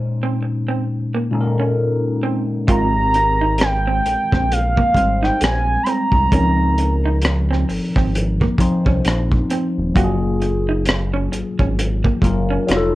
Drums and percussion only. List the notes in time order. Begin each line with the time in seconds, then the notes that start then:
2.68 kick, closed hi-hat
3.14 closed hi-hat
3.58 cross-stick, closed hi-hat
4.06 closed hi-hat
4.32 kick, cross-stick
4.52 closed hi-hat
4.77 kick
4.95 kick, closed hi-hat
5.24 cross-stick
5.41 cross-stick, closed hi-hat
5.86 closed hi-hat
6.12 kick
6.32 kick, closed hi-hat
6.78 closed hi-hat
7.21 cross-stick, closed hi-hat
7.53 cross-stick
7.69 open hi-hat
7.96 kick, cross-stick
8.15 closed hi-hat
8.41 kick
8.58 kick, closed hi-hat
8.86 kick
9.05 cross-stick, closed hi-hat
9.32 kick
9.50 closed hi-hat
9.96 kick, closed hi-hat
10.42 closed hi-hat
10.86 cross-stick, closed hi-hat
11.33 closed hi-hat
11.60 kick
11.79 closed hi-hat
12.05 kick
12.22 kick, closed hi-hat
12.69 cross-stick, closed hi-hat